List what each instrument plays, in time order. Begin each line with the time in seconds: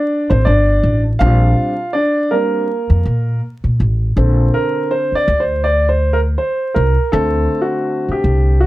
Already playing: grand piano D4 D5
0.30 upright bass A1, grand piano C4 C5
0.45 upright bass G1, grand piano D4 D5
0.83 upright bass A1
1.19 upright bass A#1, grand piano G3 C4 D4 F4 F5
1.93 grand piano D4 D5
2.31 grand piano G3 A#3 C4 D4 A#4
2.90 upright bass F2
3.05 upright bass A#2
3.64 upright bass A#2
3.80 upright bass A1
4.16 upright bass A#1, grand piano D3 C4 A4
4.54 grand piano A#4
4.91 grand piano C5
5.12 grand piano D5, muted upright bass stroke
5.28 upright bass D2
5.40 grand piano C5
5.64 grand piano D5
5.89 grand piano C5
6.13 grand piano A#4
6.38 grand piano C5
6.74 upright bass C2, grand piano A#4
7.12 upright bass D2, grand piano D3 A3 C4 A4
7.62 grand piano F#4
8.08 grand piano G4, muted upright bass stroke
8.24 upright bass C2
8.60 grand piano F#4